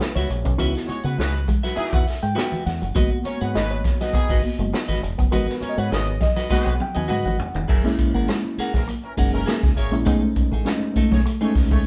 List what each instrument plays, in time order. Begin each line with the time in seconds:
Already playing: reed electric piano B4
0.00 clean electric guitar B3, muted clean electric guitar stroke, snare
0.15 fingered electric bass C#2, clean electric guitar F#4 B4 E5, reed electric piano C#5, snare, closed hi-hat, high conga, low conga
0.30 fingered electric bass A#1, muted clean electric guitar stroke, closed hi-hat
0.45 fingered electric bass B1, clean electric guitar C#4, muted clean electric guitar stroke, kick, closed hi-hat
0.57 fingered electric bass C#2, reed electric piano B3 D#4 E4 F#4, clean electric guitar C#4 F#4 B4 E5, closed hi-hat, muted conga, low conga
0.75 muted clean electric guitar stroke, snare, closed hi-hat
0.86 horn section G#3 F#4 C#5, muted fingered electric bass stroke, muted clean electric guitar stroke, closed hi-hat, high conga
1.04 fingered electric bass C#3, horn section G#3 F#4 B4, clean electric guitar B3 F#4 B4 F#5, closed hi-hat
1.17 fingered electric bass C#2, horn section G#3 F#4 B4, muted clean electric guitar stroke, snare, muted conga, high conga
1.34 muted clean electric guitar stroke, closed hi-hat, muted conga
1.48 clean electric guitar G#3, kick, closed hi-hat, low conga
1.63 clean electric guitar F#3 F#4 B4 E5, snare, closed hi-hat
1.75 horn section E3 D#4 G#4, reed electric piano B3 D#4 E4 F#4 E5, clean electric guitar B3, muted fingered electric bass stroke, closed hi-hat, muted conga
1.93 fingered electric bass E2, clean electric guitar F#4 B4 F#5, muted clean electric guitar stroke, kick, muted conga
2.07 muted clean electric guitar stroke, snare, open hi-hat
2.23 fingered electric bass G#2, clean electric guitar G#3, reed electric piano G5, muted clean electric guitar stroke, closed hi-hat
2.35 clean electric guitar B3 F#4 B4 E5, snare
2.52 closed hi-hat, high conga, low conga
2.65 fingered electric bass E2, reed electric piano F#5, muted clean electric guitar stroke, snare, closed hi-hat
2.82 fingered electric bass F#1, clean electric guitar F#3, muted clean electric guitar stroke, closed hi-hat
2.95 fingered electric bass G#1, clean electric guitar G#3 F#4 B4 D#5, reed electric piano A#3 B3 F#4, kick, closed hi-hat, muted conga, low conga
3.11 muted clean electric guitar stroke, muted conga
3.24 horn section C#4 A#4 C#5, reed electric piano C#5, muted clean electric guitar stroke, muted fingered electric bass stroke, closed hi-hat, high conga
3.40 fingered electric bass G#2, horn section G#3 F#4 B4, clean electric guitar B3 F#4 B4 F#5, closed hi-hat
3.54 fingered electric bass G#1, horn section G#3 F#4 B4, clean electric guitar G#3, reed electric piano D#5, muted clean electric guitar stroke, snare, muted conga, high conga
3.70 reed electric piano C#5, muted clean electric guitar stroke, closed hi-hat
3.84 kick, snare, closed hi-hat, low conga
4.01 clean electric guitar F#3 F#4 B4 D#5, reed electric piano D#5, snare, closed hi-hat
4.12 horn section D#3 B3 G#4, clean electric guitar B3, muted fingered electric bass stroke, muted clean electric guitar stroke, kick, closed hi-hat, muted conga
4.29 fingered electric bass G#1, clean electric guitar F#4 B4 D#5, kick, snare, closed hi-hat, muted conga
4.43 reed electric piano A#3 B3 F#4, muted clean electric guitar stroke, open hi-hat
4.59 fingered electric bass F#1, clean electric guitar G#3, muted clean electric guitar stroke, closed hi-hat
4.73 clean electric guitar B3, muted clean electric guitar stroke, snare, muted conga
4.88 fingered electric bass G#1, clean electric guitar F#4 B4 D#5, snare, closed hi-hat, high conga, low conga
5.02 fingered electric bass E1, muted clean electric guitar stroke, closed hi-hat
5.18 fingered electric bass F#1, clean electric guitar B3, muted clean electric guitar stroke, kick, closed hi-hat
5.31 fingered electric bass G#1, clean electric guitar G#3 F#4 B4 D#5, reed electric piano B3 F#4 A#4 B4, closed hi-hat, muted conga, low conga
5.48 muted clean electric guitar stroke, snare, muted conga
5.61 horn section C#4 A#4 C#5, muted fingered electric bass stroke, muted clean electric guitar stroke, closed hi-hat, high conga
5.69 reed electric piano D#5
5.77 fingered electric bass G#2, horn section G#3 F#4 B4, clean electric guitar G#3 F#4 B4 F#5, reed electric piano C#5, closed hi-hat
5.90 fingered electric bass G#1, horn section B3 G#4 D#5, muted clean electric guitar stroke, snare, high conga
6.07 muted clean electric guitar stroke, closed hi-hat, muted conga
6.20 clean electric guitar F#3, reed electric piano D#5, kick, snare, closed hi-hat, low conga
6.36 clean electric guitar F#3 F#4 B4 D#5, snare, closed hi-hat
6.50 clean electric guitar G#3 F#4 B4 D#5, horn section G#3 F#4 B4, reed electric piano A#3 B3 F#4 F#5, muted fingered electric bass stroke, kick, snare, muted conga
6.66 fingered electric bass B1, muted clean electric guitar stroke
6.80 reed electric piano G5, muted clean electric guitar stroke, high tom
6.95 fingered electric bass D#2, clean electric guitar F#3 F#4 B4 D#5, reed electric piano G#5, high tom
7.08 fingered electric bass G#2, clean electric guitar F#3 F#4 B4 D#5, reed electric piano F#5, mid tom
7.25 fingered electric bass G#1, reed electric piano F#5, muted conga, high conga, low conga
7.39 muted clean electric guitar stroke, floor tom
7.55 fingered electric bass E1, clean electric guitar D#3, muted clean electric guitar stroke, floor tom
7.68 fingered electric bass F#1, clean electric guitar F#3 G#4 A#4 E5, kick, crash
7.84 reed electric piano G#3 A#3 C#4 E4, muted clean electric guitar stroke, snare
7.98 muted clean electric guitar stroke, kick, closed hi-hat
8.14 fingered electric bass G#1, clean electric guitar A#3 G#4 A#4 F#5
8.28 clean electric guitar G#3, snare, closed hi-hat
8.45 muted clean electric guitar stroke
8.58 clean electric guitar G#4 A#4 F#5, muted fingered electric bass stroke, snare, closed hi-hat
8.74 fingered electric bass A#1, horn section E3 C#4 A#4, clean electric guitar F#3, muted clean electric guitar stroke, kick, snare
8.88 clean electric guitar A#3, muted clean electric guitar stroke, closed hi-hat
9.04 horn section E3 C#4 A#4, muted clean electric guitar stroke
9.17 fingered electric bass F#1, reed electric piano G#3 A#3 C#4 D#4, clean electric guitar G#4 A#4 F#5, muted clean electric guitar stroke, kick, open hi-hat
9.33 horn section E3 C#4 A#4, clean electric guitar G#3, muted clean electric guitar stroke
9.46 clean electric guitar A#3 G#4 A#4 E5, snare, closed hi-hat
9.63 fingered electric bass C#2, muted clean electric guitar stroke, kick, snare
9.76 fingered electric bass G#1, horn section A#3 G#4 C#5, clean electric guitar G#4 A#4 E5, muted clean electric guitar stroke, closed hi-hat
9.91 fingered electric bass A#1, reed electric piano G#3 A#3 C#4 E4, clean electric guitar C#4, muted clean electric guitar stroke, closed hi-hat
10.05 fingered electric bass B1, reed electric piano G#3 A3 C#4 D#4, clean electric guitar A3 B3 D#4 G#4, kick, closed hi-hat
10.23 muted clean electric guitar stroke
10.36 muted clean electric guitar stroke, kick, closed hi-hat
10.52 fingered electric bass A1, clean electric guitar A3 D#4 G#4
10.65 reed electric piano G#3 A3 C#4 D4, muted clean electric guitar stroke, snare, closed hi-hat
10.73 reed electric piano D#4
10.83 muted clean electric guitar stroke
10.96 clean electric guitar G#3 A3 D#4 A4, muted fingered electric bass stroke, kick, closed hi-hat
11.10 fingered electric bass B1, clean electric guitar F#3, horn section A3 G#4 C#5, muted clean electric guitar stroke, kick, snare
11.26 clean electric guitar A3, muted clean electric guitar stroke, closed hi-hat
11.41 reed electric piano G#3 A3 C#4 D#4, horn section A3 G#4 C#5, clean electric guitar A3 D#4 G#4, muted clean electric guitar stroke
11.55 fingered electric bass C#2, muted clean electric guitar stroke, kick, snare, open hi-hat
11.71 clean electric guitar G#3, horn section A3 G#4 C#5, muted clean electric guitar stroke, kick